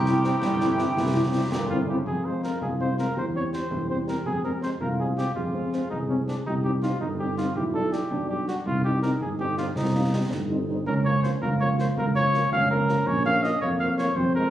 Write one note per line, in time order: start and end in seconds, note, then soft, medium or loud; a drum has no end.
0.00 0.33 C2 medium
0.00 1.75 E4 medium
0.00 1.48 G4 medium
0.00 1.84 G5 medium
0.05 0.12 G3 medium
0.05 0.12 C4 medium
0.05 0.12 E4 medium
0.05 snare medium
0.23 0.31 E3 medium
0.23 0.30 G3 medium
0.23 0.30 C4 medium
0.23 0.31 C4 medium
0.23 0.30 E4 medium
0.23 snare soft
0.42 0.84 G1 medium
0.42 0.60 G3 medium
0.42 concert bass drum medium
0.42 snare medium
0.60 0.95 E3 medium
0.60 0.67 G3 medium
0.60 0.67 C4 medium
0.60 0.67 E4 medium
0.60 snare soft
0.78 0.85 G3 medium
0.78 0.85 C4 medium
0.78 0.85 E4 medium
0.78 snare soft
0.97 1.43 C2 medium
0.97 1.23 E3 medium
0.97 concert bass drum medium
0.97 snare medium
1.15 1.22 G3 soft
1.15 1.22 C4 medium
1.15 1.22 E4 medium
1.26 1.30 C#3 medium
1.33 1.43 C3 medium
1.33 1.40 G3 medium
1.33 1.40 C4 medium
1.33 1.40 E4 medium
1.52 1.98 G1 medium
1.52 1.78 A#2 medium
1.52 1.69 G4 medium
1.52 concert bass drum medium
1.52 snare medium
1.70 1.77 G3 medium
1.70 1.77 C4 medium
1.70 1.77 E4 medium
1.70 1.78 F4 medium
1.80 1.88 C3 medium
1.88 2.05 C#3 medium
1.88 1.95 G3 soft
1.88 1.95 C4 medium
1.88 1.95 E4 medium
1.88 1.97 G4 medium
2.06 2.52 F2 soft
2.06 3.18 F4 soft
2.06 2.27 G#4 medium
2.06 concert bass drum medium
2.25 2.32 G#3 soft
2.25 2.32 C4 soft
2.25 2.32 F4 soft
2.25 2.43 C5 medium
2.43 2.50 G#3 soft
2.43 2.50 C4 soft
2.43 2.50 F4 soft
2.43 2.60 A#4 soft
2.43 snare soft
2.61 3.07 C2 soft
2.61 2.70 G#4 soft
2.61 concert bass drum medium
2.79 2.86 G#3 soft
2.79 2.86 C4 soft
2.79 2.86 F4 soft
2.79 2.97 C5 medium
2.98 3.04 G#3 soft
2.98 3.04 C4 soft
2.98 3.04 F4 soft
2.98 3.16 A#4 soft
2.98 snare soft
3.16 3.62 E2 soft
3.16 4.81 G4 medium
3.16 3.26 C5 medium
3.16 concert bass drum medium
3.34 3.41 G3 soft
3.34 3.41 C4 soft
3.34 3.44 C#5 medium
3.53 3.60 G3 soft
3.53 3.59 C4 soft
3.53 3.88 C5 medium
3.53 snare soft
3.71 4.17 E2 soft
3.71 concert bass drum medium
3.89 3.96 G3 soft
3.89 3.96 C4 soft
3.89 3.98 C5 medium
4.08 4.14 G3 soft
4.08 4.15 C4 soft
4.08 4.17 A#4 medium
4.08 snare soft
4.26 4.72 F2 soft
4.26 4.43 G#4 medium
4.26 concert bass drum medium
4.44 4.51 G#3 soft
4.44 4.51 C4 soft
4.44 4.53 A#4 medium
4.61 4.68 G#3 soft
4.61 4.68 C4 soft
4.61 4.71 C5 medium
4.61 snare soft
4.81 5.27 C2 soft
4.81 5.38 F4 soft
4.81 4.89 A#4 medium
4.81 concert bass drum medium
4.99 5.05 G#3 soft
4.99 5.06 C4 soft
4.99 5.08 G#4 medium
5.17 5.24 G#3 soft
5.17 5.24 C4 soft
5.17 5.35 G4 soft
5.17 snare soft
5.35 5.82 F2 soft
5.35 5.87 F4 medium
5.35 6.45 G#4 medium
5.35 concert bass drum medium
5.53 5.60 G#3 soft
5.53 5.60 C4 soft
5.72 5.79 G#3 soft
5.72 5.79 C4 soft
5.72 snare soft
5.90 6.37 C2 soft
5.90 5.99 D#4 medium
5.90 concert bass drum medium
6.09 6.15 G#3 soft
6.09 6.16 C4 soft
6.09 6.18 C#4 soft
6.27 6.34 G#3 soft
6.27 6.34 C4 soft
6.27 6.36 D4 soft
6.27 snare soft
6.46 6.92 C2 soft
6.46 6.55 D#4 medium
6.46 7.02 G4 medium
6.46 concert bass drum medium
6.64 6.71 G3 soft
6.64 6.71 C4 soft
6.64 6.71 D#4 soft
6.64 6.72 G4 medium
6.82 6.89 G3 soft
6.82 6.89 C4 soft
6.82 6.89 D#4 soft
6.82 7.00 F4 soft
6.82 snare soft
7.00 7.47 G1 soft
7.00 7.56 D#4 soft
7.00 7.09 D#4 medium
7.00 concert bass drum medium
7.19 7.26 G3 soft
7.19 7.26 C4 soft
7.19 7.26 D#4 soft
7.19 7.36 G4 medium
7.38 7.44 G3 soft
7.38 7.44 C4 soft
7.38 7.44 D#4 soft
7.38 7.55 F4 soft
7.38 snare soft
7.55 8.02 B1 soft
7.55 8.07 E4 soft
7.55 7.64 G4 medium
7.55 concert bass drum medium
7.74 7.81 G3 soft
7.74 7.81 D4 soft
7.74 7.94 A4 medium
7.92 7.99 G3 soft
7.92 7.99 D4 soft
7.92 8.29 G4 medium
7.92 snare soft
8.11 8.52 B1 soft
8.11 8.44 D4 soft
8.11 concert bass drum medium
8.29 8.36 G3 soft
8.29 8.36 D4 soft
8.29 8.47 G4 medium
8.48 8.55 G3 soft
8.48 8.54 D4 soft
8.48 8.56 F#4 soft
8.48 snare soft
8.66 9.12 C2 soft
8.66 9.77 D#4 medium
8.66 8.83 F4 medium
8.66 concert bass drum medium
8.84 8.91 G3 soft
8.84 8.91 C4 soft
8.84 8.91 D#4 soft
8.84 9.01 G4 medium
9.02 9.09 G3 soft
9.02 9.10 C4 soft
9.02 9.10 D#4 soft
9.02 9.11 A#4 medium
9.02 snare soft
9.20 9.67 G1 soft
9.20 9.30 G#4 medium
9.20 concert bass drum medium
9.39 9.46 G3 soft
9.39 9.46 C4 soft
9.39 9.46 D#4 soft
9.39 9.57 G4 medium
9.57 9.64 G3 soft
9.57 9.64 C4 soft
9.57 9.64 D#4 soft
9.57 9.66 F4 medium
9.57 snare soft
9.76 10.22 C2 medium
9.76 9.93 C4 soft
9.76 10.28 D#4 medium
9.76 concert bass drum medium
9.76 snare soft
9.94 10.01 G3 soft
9.94 10.14 A#3 soft
9.94 10.01 C4 soft
9.94 10.01 D#4 soft
10.12 10.19 G3 soft
10.12 10.33 C4 soft
10.12 10.19 C4 soft
10.12 10.19 D#4 soft
10.31 10.77 G1 soft
10.31 10.86 D#4 medium
10.31 concert bass drum medium
10.31 snare soft
10.49 10.56 G3 soft
10.49 10.56 C4 soft
10.49 10.56 D#4 soft
10.68 10.75 G3 soft
10.68 10.75 C4 soft
10.68 10.75 D#4 soft
10.86 11.33 C#2 medium
10.86 11.38 C#4 medium
10.86 10.95 A#4 medium
10.86 concert bass drum medium
11.05 11.12 F3 soft
11.05 11.12 A#3 soft
11.05 11.12 F4 soft
11.05 11.22 C#5 medium
11.23 11.30 F3 soft
11.23 11.30 A#3 medium
11.23 11.30 F4 soft
11.23 11.31 C5 medium
11.23 snare soft
11.41 11.88 C#2 soft
11.41 12.48 F4 medium
11.41 11.50 A#4 medium
11.41 concert bass drum medium
11.60 11.67 F3 soft
11.60 11.67 A#3 soft
11.60 11.67 F4 soft
11.60 11.69 C#5 medium
11.78 11.85 F3 soft
11.78 11.85 A#3 soft
11.78 11.85 F4 soft
11.78 11.88 C5 medium
11.78 snare soft
11.97 12.43 C#2 medium
11.97 12.06 A#4 medium
11.97 concert bass drum medium
12.16 12.22 F3 soft
12.16 12.22 A#3 soft
12.16 12.22 F4 soft
12.16 12.50 C#5 medium
12.34 12.40 F3 soft
12.34 12.40 A#3 soft
12.34 12.40 F4 soft
12.34 snare soft
12.52 12.98 C#2 soft
12.52 13.03 C#4 medium
12.52 12.69 F5 medium
12.52 concert bass drum medium
12.71 12.77 F3 soft
12.71 12.77 A#3 soft
12.71 12.77 F4 soft
12.71 13.09 A#4 medium
12.89 12.96 F3 soft
12.89 12.96 A#3 soft
12.89 12.96 F4 soft
12.89 snare soft
13.06 13.53 A#1 medium
13.06 13.58 C#4 medium
13.06 13.25 C#5 medium
13.06 concert bass drum medium
13.25 13.32 F3 soft
13.25 13.32 A#3 medium
13.25 13.32 F4 soft
13.25 13.45 F5 medium
13.43 13.50 F3 soft
13.43 13.50 A#3 soft
13.43 13.50 F4 soft
13.43 13.61 D#5 medium
13.43 snare soft
13.62 14.08 F2 soft
13.62 14.13 A#3 medium
13.62 13.70 C#5 medium
13.62 concert bass drum medium
13.79 13.86 F3 soft
13.79 13.86 A#3 medium
13.79 13.86 F4 soft
13.79 13.88 F5 medium
13.98 14.05 F3 soft
13.98 14.05 A#3 soft
13.98 14.05 F4 soft
13.98 14.18 C#5 medium
13.98 snare soft
14.16 14.50 F2 medium
14.16 14.50 C4 medium
14.16 14.34 C5 medium
14.16 concert bass drum medium
14.35 14.42 F3 soft
14.35 14.42 G#3 soft
14.35 14.42 F4 soft
14.35 14.50 A#4 medium